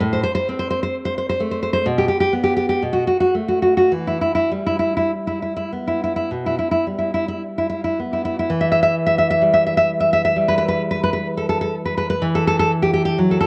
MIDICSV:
0, 0, Header, 1, 2, 480
1, 0, Start_track
1, 0, Key_signature, 1, "minor"
1, 0, Tempo, 931677
1, 10, Time_signature, 4, 2, 24, 8
1, 1450, Tempo, 1088929
1, 1930, Tempo, 1188119
1, 2890, Tempo, 1100917
1, 3850, Tempo, 937500
1, 6403, End_track
2, 0, Start_track
2, 0, Title_t, "Nylon-string guitar"
2, 0, Program_c, 0, 24
2, 2, Note_on_c, 0, 45, 61
2, 66, Note_on_c, 0, 72, 64
2, 115, Note_off_c, 0, 72, 0
2, 120, Note_off_c, 0, 45, 0
2, 121, Note_on_c, 0, 72, 75
2, 173, Note_off_c, 0, 72, 0
2, 180, Note_on_c, 0, 72, 82
2, 243, Note_off_c, 0, 72, 0
2, 251, Note_on_c, 0, 60, 46
2, 305, Note_on_c, 0, 72, 67
2, 357, Note_off_c, 0, 72, 0
2, 363, Note_on_c, 0, 72, 70
2, 421, Note_off_c, 0, 72, 0
2, 427, Note_on_c, 0, 72, 66
2, 487, Note_off_c, 0, 72, 0
2, 542, Note_on_c, 0, 72, 64
2, 601, Note_off_c, 0, 72, 0
2, 607, Note_on_c, 0, 72, 63
2, 661, Note_off_c, 0, 72, 0
2, 667, Note_on_c, 0, 72, 72
2, 723, Note_on_c, 0, 57, 43
2, 725, Note_off_c, 0, 72, 0
2, 780, Note_on_c, 0, 72, 57
2, 832, Note_off_c, 0, 72, 0
2, 838, Note_on_c, 0, 72, 68
2, 886, Note_off_c, 0, 72, 0
2, 893, Note_on_c, 0, 72, 70
2, 954, Note_off_c, 0, 72, 0
2, 957, Note_off_c, 0, 57, 0
2, 958, Note_on_c, 0, 47, 63
2, 959, Note_off_c, 0, 60, 0
2, 1021, Note_on_c, 0, 67, 70
2, 1067, Note_off_c, 0, 67, 0
2, 1072, Note_off_c, 0, 47, 0
2, 1073, Note_on_c, 0, 67, 66
2, 1129, Note_off_c, 0, 67, 0
2, 1135, Note_on_c, 0, 67, 71
2, 1196, Note_off_c, 0, 67, 0
2, 1200, Note_on_c, 0, 59, 43
2, 1255, Note_on_c, 0, 67, 60
2, 1316, Note_off_c, 0, 67, 0
2, 1322, Note_on_c, 0, 67, 65
2, 1380, Note_off_c, 0, 67, 0
2, 1386, Note_on_c, 0, 67, 66
2, 1450, Note_off_c, 0, 67, 0
2, 1451, Note_off_c, 0, 59, 0
2, 1454, Note_on_c, 0, 47, 48
2, 1500, Note_on_c, 0, 66, 56
2, 1558, Note_off_c, 0, 66, 0
2, 1562, Note_off_c, 0, 47, 0
2, 1564, Note_on_c, 0, 66, 56
2, 1616, Note_off_c, 0, 66, 0
2, 1621, Note_on_c, 0, 66, 64
2, 1681, Note_off_c, 0, 66, 0
2, 1684, Note_on_c, 0, 57, 32
2, 1745, Note_on_c, 0, 66, 48
2, 1800, Note_off_c, 0, 66, 0
2, 1806, Note_on_c, 0, 66, 52
2, 1866, Note_off_c, 0, 66, 0
2, 1871, Note_on_c, 0, 66, 64
2, 1932, Note_off_c, 0, 57, 0
2, 1932, Note_off_c, 0, 66, 0
2, 1935, Note_on_c, 0, 52, 47
2, 1998, Note_on_c, 0, 64, 54
2, 2049, Note_off_c, 0, 52, 0
2, 2050, Note_off_c, 0, 64, 0
2, 2055, Note_on_c, 0, 64, 56
2, 2105, Note_off_c, 0, 64, 0
2, 2110, Note_on_c, 0, 64, 54
2, 2170, Note_off_c, 0, 64, 0
2, 2177, Note_on_c, 0, 55, 39
2, 2238, Note_on_c, 0, 64, 53
2, 2284, Note_off_c, 0, 64, 0
2, 2289, Note_on_c, 0, 64, 54
2, 2350, Note_off_c, 0, 64, 0
2, 2360, Note_on_c, 0, 64, 53
2, 2416, Note_off_c, 0, 64, 0
2, 2483, Note_on_c, 0, 64, 47
2, 2538, Note_off_c, 0, 64, 0
2, 2544, Note_on_c, 0, 64, 48
2, 2596, Note_off_c, 0, 64, 0
2, 2601, Note_on_c, 0, 64, 51
2, 2658, Note_off_c, 0, 64, 0
2, 2666, Note_on_c, 0, 59, 31
2, 2726, Note_on_c, 0, 64, 49
2, 2780, Note_off_c, 0, 64, 0
2, 2792, Note_on_c, 0, 64, 51
2, 2837, Note_off_c, 0, 64, 0
2, 2842, Note_on_c, 0, 64, 53
2, 2895, Note_off_c, 0, 55, 0
2, 2896, Note_off_c, 0, 64, 0
2, 2903, Note_on_c, 0, 47, 37
2, 2970, Note_on_c, 0, 64, 50
2, 3016, Note_off_c, 0, 47, 0
2, 3019, Note_off_c, 0, 64, 0
2, 3024, Note_on_c, 0, 64, 47
2, 3074, Note_off_c, 0, 64, 0
2, 3079, Note_on_c, 0, 64, 54
2, 3137, Note_off_c, 0, 64, 0
2, 3146, Note_on_c, 0, 55, 29
2, 3198, Note_on_c, 0, 64, 39
2, 3257, Note_off_c, 0, 64, 0
2, 3265, Note_on_c, 0, 64, 46
2, 3322, Note_off_c, 0, 64, 0
2, 3327, Note_on_c, 0, 64, 47
2, 3384, Note_off_c, 0, 64, 0
2, 3385, Note_off_c, 0, 59, 0
2, 3457, Note_on_c, 0, 64, 46
2, 3502, Note_off_c, 0, 64, 0
2, 3507, Note_on_c, 0, 64, 49
2, 3566, Note_off_c, 0, 64, 0
2, 3571, Note_on_c, 0, 64, 49
2, 3630, Note_off_c, 0, 64, 0
2, 3638, Note_on_c, 0, 59, 28
2, 3696, Note_on_c, 0, 64, 40
2, 3744, Note_off_c, 0, 64, 0
2, 3749, Note_on_c, 0, 64, 51
2, 3801, Note_off_c, 0, 64, 0
2, 3811, Note_on_c, 0, 64, 51
2, 3855, Note_off_c, 0, 59, 0
2, 3857, Note_off_c, 0, 55, 0
2, 3857, Note_off_c, 0, 64, 0
2, 3858, Note_on_c, 0, 52, 55
2, 3914, Note_on_c, 0, 76, 67
2, 3964, Note_off_c, 0, 76, 0
2, 3970, Note_on_c, 0, 76, 77
2, 4020, Note_off_c, 0, 76, 0
2, 4026, Note_on_c, 0, 76, 88
2, 4086, Note_off_c, 0, 76, 0
2, 4148, Note_on_c, 0, 76, 76
2, 4203, Note_off_c, 0, 76, 0
2, 4209, Note_on_c, 0, 76, 72
2, 4265, Note_off_c, 0, 76, 0
2, 4271, Note_on_c, 0, 76, 78
2, 4328, Note_on_c, 0, 55, 49
2, 4331, Note_off_c, 0, 76, 0
2, 4390, Note_on_c, 0, 76, 75
2, 4449, Note_off_c, 0, 76, 0
2, 4456, Note_on_c, 0, 76, 73
2, 4504, Note_off_c, 0, 76, 0
2, 4510, Note_on_c, 0, 76, 87
2, 4571, Note_off_c, 0, 76, 0
2, 4629, Note_on_c, 0, 76, 69
2, 4687, Note_off_c, 0, 76, 0
2, 4693, Note_on_c, 0, 76, 84
2, 4748, Note_off_c, 0, 76, 0
2, 4754, Note_on_c, 0, 76, 84
2, 4806, Note_off_c, 0, 55, 0
2, 4812, Note_on_c, 0, 55, 46
2, 4813, Note_off_c, 0, 76, 0
2, 4875, Note_on_c, 0, 71, 70
2, 4917, Note_off_c, 0, 71, 0
2, 4923, Note_on_c, 0, 71, 74
2, 4971, Note_off_c, 0, 71, 0
2, 4978, Note_on_c, 0, 71, 77
2, 5043, Note_off_c, 0, 71, 0
2, 5092, Note_on_c, 0, 71, 66
2, 5152, Note_off_c, 0, 71, 0
2, 5158, Note_on_c, 0, 71, 74
2, 5200, Note_off_c, 0, 71, 0
2, 5206, Note_on_c, 0, 71, 70
2, 5275, Note_off_c, 0, 71, 0
2, 5331, Note_on_c, 0, 69, 61
2, 5385, Note_off_c, 0, 69, 0
2, 5391, Note_on_c, 0, 69, 69
2, 5446, Note_off_c, 0, 69, 0
2, 5452, Note_on_c, 0, 69, 75
2, 5518, Note_off_c, 0, 69, 0
2, 5577, Note_on_c, 0, 71, 58
2, 5633, Note_off_c, 0, 71, 0
2, 5639, Note_on_c, 0, 71, 71
2, 5696, Note_off_c, 0, 71, 0
2, 5702, Note_on_c, 0, 71, 80
2, 5746, Note_off_c, 0, 55, 0
2, 5750, Note_off_c, 0, 52, 0
2, 5763, Note_on_c, 0, 52, 68
2, 5765, Note_off_c, 0, 71, 0
2, 5831, Note_on_c, 0, 69, 74
2, 5888, Note_off_c, 0, 69, 0
2, 5894, Note_on_c, 0, 69, 81
2, 5950, Note_off_c, 0, 69, 0
2, 5956, Note_on_c, 0, 69, 93
2, 6012, Note_off_c, 0, 69, 0
2, 6074, Note_on_c, 0, 67, 73
2, 6124, Note_off_c, 0, 67, 0
2, 6130, Note_on_c, 0, 67, 72
2, 6184, Note_off_c, 0, 67, 0
2, 6190, Note_on_c, 0, 67, 80
2, 6249, Note_off_c, 0, 67, 0
2, 6258, Note_on_c, 0, 54, 51
2, 6323, Note_on_c, 0, 69, 69
2, 6365, Note_off_c, 0, 69, 0
2, 6371, Note_on_c, 0, 69, 82
2, 6403, Note_off_c, 0, 52, 0
2, 6403, Note_off_c, 0, 54, 0
2, 6403, Note_off_c, 0, 69, 0
2, 6403, End_track
0, 0, End_of_file